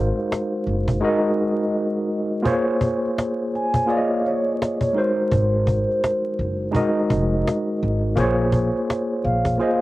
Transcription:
0.00 0.10 G#1 loud
0.00 0.38 G#3 medium
0.00 0.39 D#4 medium
0.00 0.39 F#4 medium
0.00 0.40 A#4 medium
0.00 0.40 C5 medium
0.00 2.47 F5 medium
0.19 cajon slap soft
0.32 cajon slap loud
0.67 0.98 F#1 medium
0.67 cajon slap soft
0.88 cajon bass loud
1.00 2.02 G#3 medium
1.00 2.03 D#4 medium
1.00 2.03 F#4 medium
1.00 2.04 A#4 medium
1.04 2.04 D#5 medium
2.42 3.45 A#3 medium
2.42 3.45 F4 medium
2.42 3.46 G#4 medium
2.42 3.46 C5 medium
2.42 cajon bass medium
2.47 3.47 C#5 medium
2.81 cajon bass medium
3.06 cajon slap soft
3.18 cajon slap loud
3.55 3.91 G#5 loud
3.55 cajon slap soft
3.74 cajon bass loud
3.86 4.88 A#3 medium
3.86 4.89 F4 medium
3.86 4.89 G#4 medium
3.86 4.90 C#5 medium
3.86 cajon slap medium
3.90 3.97 D5 medium
3.90 4.27 F5 loud
3.97 4.93 D#5 medium
4.26 4.91 C#5 loud
4.26 cajon slap soft
4.62 cajon slap loud
4.81 cajon bass medium
4.92 6.10 G#3 medium
4.92 6.11 D#4 medium
4.92 6.11 F#4 medium
4.92 4.97 C#5 medium
4.97 6.12 A#4 medium
4.97 6.35 C5 medium
4.97 6.12 C5 medium
4.97 cajon slap soft
5.32 5.82 G#1 loud
5.32 cajon bass medium
5.67 cajon bass medium
5.91 cajon slap soft
6.04 cajon slap loud
6.39 6.70 F#1 medium
6.39 cajon slap soft
6.71 7.74 G#3 medium
6.71 7.74 D#4 medium
6.71 7.75 F#4 medium
6.71 7.75 A#4 medium
6.71 cajon bass medium
6.71 cajon slap medium
6.76 7.76 D#5 loud
7.10 7.42 F1 medium
7.10 cajon bass loud
7.47 cajon slap loud
7.83 8.14 G#1 medium
7.83 cajon slap soft
8.16 8.67 A#1 loud
8.16 9.17 A#3 medium
8.16 9.17 F4 medium
8.16 9.18 G#4 medium
8.16 9.18 C5 medium
8.16 cajon bass medium
8.20 9.19 C#5 loud
8.52 cajon bass medium
8.77 cajon slap soft
8.90 cajon slap loud
9.24 9.56 A#1 medium
9.24 9.81 F5 loud
9.24 cajon slap soft
9.45 cajon bass loud
9.58 9.81 A#3 medium
9.58 9.81 F4 medium
9.58 9.81 G#4 medium
9.58 9.81 C5 medium
9.58 cajon slap medium
9.62 9.81 D#5 medium

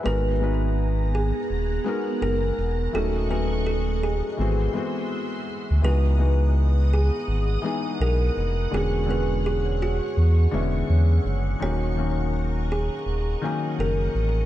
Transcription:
0.00 0.31 G#3 medium
0.00 0.27 B4 medium
0.00 0.27 E5 medium
0.04 1.33 G#1 loud
0.04 2.90 B3 medium
0.04 0.31 B3 medium
0.04 0.31 D#4 medium
0.04 0.32 F#4 medium
0.04 2.91 G#4 medium
0.04 0.32 A#4 medium
0.04 1.09 B4 medium
0.04 4.34 F#5 medium
0.04 2.91 A#5 medium
0.40 1.37 G#3 medium
0.40 1.37 B3 medium
0.40 1.38 D#4 medium
0.40 1.38 F#4 medium
0.40 1.39 B4 medium
1.15 1.70 G#4 medium
1.50 1.80 D#1 medium
1.84 2.54 G#3 medium
1.84 2.55 B3 medium
1.84 2.55 D#4 medium
1.84 2.56 F#4 medium
1.84 2.56 A#4 medium
2.22 2.52 F#1 loud
2.22 2.54 A#4 medium
2.59 2.88 E1 medium
2.92 4.22 D#1 loud
2.92 3.20 F#3 medium
2.92 3.20 A3 medium
2.92 4.36 A3 medium
2.92 3.21 C#4 medium
2.92 3.21 D#4 medium
2.92 3.21 F#4 medium
2.92 3.27 A4 medium
2.92 4.36 D#5 medium
2.92 4.36 C#6 medium
3.28 4.25 F#3 medium
3.28 4.26 A3 medium
3.28 4.26 C#4 medium
3.28 4.27 D#4 medium
3.28 4.27 F#4 medium
3.28 3.63 B4 medium
3.67 3.99 A4 medium
4.03 4.59 G#4 medium
4.37 4.69 G#1 loud
4.37 4.69 E3 medium
4.37 4.69 G#3 medium
4.37 4.70 B3 medium
4.37 4.70 C4 medium
4.37 4.71 F#4 medium
4.37 5.81 G#4 medium
4.37 5.81 E5 medium
4.37 14.46 F#5 medium
4.37 5.81 C6 medium
4.73 5.43 E3 medium
4.73 5.44 G#3 medium
4.73 5.44 B3 medium
4.73 5.45 C4 medium
4.77 5.45 F#4 medium
5.71 5.81 D2 medium
5.81 7.10 C#2 medium
5.81 6.09 E3 medium
5.81 6.09 G#3 medium
5.81 8.69 B3 medium
5.81 6.10 B3 medium
5.81 6.10 D#4 medium
5.81 6.88 B4 medium
5.81 8.68 D#5 medium
5.81 8.68 D#6 medium
5.85 6.11 F#4 medium
6.17 7.14 E3 medium
6.17 7.15 G#3 medium
6.17 7.15 B3 medium
6.17 7.16 D#4 medium
6.17 7.16 F#4 medium
6.93 7.48 G#4 medium
7.28 7.58 G#1 medium
7.62 8.32 E3 medium
7.62 8.33 G#3 medium
7.62 8.33 B3 medium
7.62 8.34 D#4 medium
7.62 8.34 G#4 medium
8.00 8.30 B1 loud
8.00 8.33 A#4 medium
8.37 8.67 F1 medium
8.71 10.00 E1 medium
8.71 8.98 D3 medium
8.71 8.98 G#3 medium
8.71 8.99 B3 medium
8.71 8.99 C#4 medium
8.71 9.00 F#4 medium
8.71 11.58 G#4 medium
8.71 9.06 G#4 medium
8.71 11.58 C#5 medium
8.71 14.46 C#6 medium
9.06 10.03 D3 medium
9.06 10.04 G#3 medium
9.06 10.04 B3 medium
9.06 10.05 C#4 medium
9.06 10.05 F#4 medium
9.11 9.42 B4 medium
9.46 9.78 G#4 medium
9.82 10.37 F#4 medium
10.17 10.47 E2 loud
10.51 10.83 E1 medium
10.51 11.22 D3 medium
10.51 11.22 G#3 medium
10.51 11.23 B3 medium
10.51 11.23 C#4 medium
10.51 11.23 E4 medium
10.90 11.19 E2 medium
11.25 11.55 F#1 medium
11.60 12.89 D#1 medium
11.60 11.87 D#3 medium
11.60 11.87 F#3 medium
11.60 11.88 A#3 medium
11.60 11.88 C#4 medium
11.60 11.89 F#4 medium
11.60 14.46 A#4 medium
11.60 12.66 C#5 medium
11.60 14.46 D#5 medium
11.95 12.93 D#3 medium
11.95 12.93 F#3 medium
11.95 12.94 A#3 medium
11.95 12.94 C#4 medium
11.95 12.95 F#4 medium
12.72 13.27 G#4 medium
13.06 13.36 D#1 loud
13.41 14.11 D#3 medium
13.41 14.11 F#3 medium
13.41 14.12 A#3 medium
13.41 14.12 C#4 medium
13.41 14.13 G#4 medium
13.79 14.09 F#1 medium
13.79 14.11 A#4 medium
14.15 14.45 A1 medium

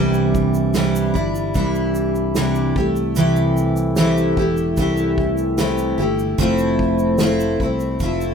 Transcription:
0.00 1.11 C2 loud
0.00 0.73 C3 medium
0.00 0.74 E3 medium
0.00 0.75 G3 loud
0.00 0.74 D4 medium
0.00 0.76 E4 medium
0.14 shaker medium
0.35 kick loud
0.35 shaker medium
0.54 shaker medium
0.74 1.14 C3 medium
0.74 1.15 E3 medium
0.74 1.15 G3 medium
0.74 1.15 D4 medium
0.74 1.12 E4 medium
0.74 snare loud
0.74 shaker medium
0.95 shaker medium
1.14 1.52 G1 medium
1.14 1.55 G3 medium
1.14 1.56 D4 medium
1.14 1.54 E4 medium
1.14 kick medium
1.14 shaker soft
1.35 shaker soft
1.54 2.72 C2 loud
1.54 2.36 E3 medium
1.54 2.36 G3 medium
1.54 2.36 D4 medium
1.54 2.37 E4 medium
1.54 kick medium
1.54 shaker medium
1.75 shaker soft
1.95 shaker soft
2.15 shaker soft
2.35 2.76 C3 medium
2.35 2.76 E3 medium
2.35 2.77 G3 medium
2.35 2.77 D4 medium
2.35 2.75 E4 medium
2.35 snare loud
2.35 shaker medium
2.55 shaker soft
2.76 4.33 C2 medium
2.76 3.16 A3 soft
2.76 3.17 E4 soft
2.76 3.16 G4 medium
2.76 kick medium
2.96 shaker soft
3.16 3.95 C3 medium
3.16 3.97 E3 medium
3.16 3.97 A3 medium
3.16 3.98 E4 loud
3.16 3.97 G4 loud
3.16 shaker medium
3.36 shaker medium
3.57 shaker medium
3.77 shaker soft
3.96 4.37 C3 medium
3.96 4.37 E3 medium
3.96 4.37 A3 medium
3.96 4.37 E4 medium
3.96 4.36 G4 medium
3.96 snare loud
3.96 shaker medium
4.17 shaker medium
4.37 4.74 E1 medium
4.37 4.77 A3 soft
4.37 4.78 E4 medium
4.37 4.77 G4 medium
4.37 kick medium
4.57 shaker soft
4.77 5.95 C2 loud
4.77 5.58 E3 medium
4.77 5.58 A3 medium
4.77 5.59 E4 medium
4.77 5.59 G4 medium
4.77 kick medium
4.77 shaker medium
4.97 shaker soft
5.18 kick loud
5.38 shaker soft
5.58 5.98 C3 medium
5.58 5.98 E3 medium
5.58 5.99 A3 medium
5.58 5.98 E4 medium
5.58 5.97 G4 medium
5.58 snare loud
5.58 shaker medium
5.78 shaker soft
5.98 6.35 G1 loud
5.98 6.38 A3 soft
5.98 6.39 E4 medium
5.98 6.38 G4 medium
6.19 shaker soft
6.38 7.56 F1 loud
6.38 7.18 F3 loud
6.38 7.19 A3 medium
6.38 7.19 C4 loud
6.38 7.21 E4 loud
6.38 kick medium
6.38 shaker medium
6.58 shaker medium
6.79 kick loud
6.99 shaker medium
7.18 7.60 F3 medium
7.18 7.60 A3 medium
7.18 7.60 C4 medium
7.18 7.59 E4 loud
7.18 snare loud
7.18 shaker medium
7.40 shaker medium
7.60 7.97 C2 medium
7.60 8.00 A3 soft
7.60 8.01 C4 soft
7.60 8.00 E4 medium
7.60 kick medium
7.80 shaker soft
8.00 8.34 F1 loud
8.00 8.34 F3 medium
8.00 8.34 A3 medium
8.00 8.34 C4 medium
8.00 8.34 E4 medium
8.00 kick medium
8.00 shaker medium
8.21 shaker soft

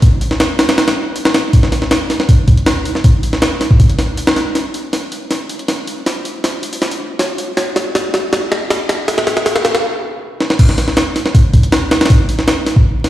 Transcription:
0.02 kick loud
0.02 open hi-hat medium
0.21 open hi-hat medium
0.31 snare medium
0.40 snare loud
0.40 open hi-hat medium
0.59 snare loud
0.59 open hi-hat medium
0.69 snare loud
0.69 open hi-hat medium
0.78 snare loud
0.78 open hi-hat medium
0.88 snare loud
0.88 open hi-hat medium
1.16 open hi-hat medium
1.25 snare loud
1.34 snare loud
1.34 open hi-hat medium
1.53 kick loud
1.53 open hi-hat medium
1.63 snare medium
1.72 snare soft
1.72 open hi-hat medium
1.82 snare soft
1.91 snare loud
1.91 open hi-hat medium
2.10 snare soft
2.10 open hi-hat medium
2.20 snare medium
2.29 kick loud
2.29 open hi-hat medium
2.48 kick loud
2.48 open hi-hat medium
2.57 closed hi-hat soft
2.66 snare loud
2.66 open hi-hat medium
2.85 open hi-hat medium
2.95 snare soft
3.04 kick loud
3.04 open hi-hat medium
3.23 open hi-hat medium
3.33 snare medium
3.42 snare loud
3.42 open hi-hat medium
3.61 snare soft
3.61 open hi-hat medium
3.71 kick loud
3.80 kick loud
3.80 open hi-hat medium
3.90 closed hi-hat soft
3.99 snare soft
3.99 open hi-hat medium
4.17 open hi-hat medium
4.27 snare loud
4.36 snare soft
4.36 open hi-hat medium
4.55 snare soft
4.55 open hi-hat medium
4.74 open hi-hat medium
4.93 snare soft
4.93 open hi-hat medium
5.12 open hi-hat medium
5.31 snare medium
5.31 open hi-hat medium
5.50 open hi-hat medium
5.59 closed hi-hat soft
5.68 snare medium
5.68 open hi-hat medium
5.87 open hi-hat medium
6.06 snare medium
6.06 open hi-hat medium
6.25 open hi-hat medium
6.44 snare medium
6.44 open hi-hat medium
6.63 open hi-hat medium
6.73 open hi-hat medium
6.82 snare medium
6.82 open hi-hat medium
6.91 open hi-hat medium
7.19 snare medium
7.19 open hi-hat medium
7.38 open hi-hat medium
7.57 snare medium
7.57 open hi-hat medium
7.76 snare medium
7.76 open hi-hat medium
7.95 snare medium
7.95 open hi-hat medium
8.14 snare medium
8.14 open hi-hat medium
8.33 snare medium
8.33 open hi-hat medium
8.52 snare medium
8.70 snare medium
8.70 open hi-hat medium
8.89 snare medium
8.89 open hi-hat medium
9.08 snare medium
9.08 open hi-hat medium
9.18 snare medium
9.27 snare loud
9.27 open hi-hat medium
9.37 snare medium
9.46 snare loud
9.46 open hi-hat medium
9.56 snare medium
9.65 snare loud
9.65 open hi-hat medium
9.75 snare medium
10.40 snare medium
10.50 snare medium
10.59 kick loud
10.59 open hi-hat medium
10.59 crash medium
10.69 snare soft
10.78 snare soft
10.78 open hi-hat medium
10.88 snare soft
10.97 snare loud
10.97 open hi-hat medium
11.16 snare soft
11.16 open hi-hat medium
11.26 snare medium
11.35 kick loud
11.35 open hi-hat medium
11.53 kick loud
11.53 open hi-hat medium
11.63 closed hi-hat soft
11.72 snare loud
11.72 open hi-hat medium
11.91 snare loud
11.91 open hi-hat medium
12.01 snare medium
12.01 open hi-hat medium
12.06 snare medium
12.06 open hi-hat medium
12.10 kick loud
12.10 open hi-hat medium
12.29 open hi-hat medium
12.39 snare medium
12.48 snare loud
12.48 open hi-hat medium
12.66 snare medium
12.66 open hi-hat medium
12.76 kick loud
13.04 snare soft
13.04 open hi-hat medium

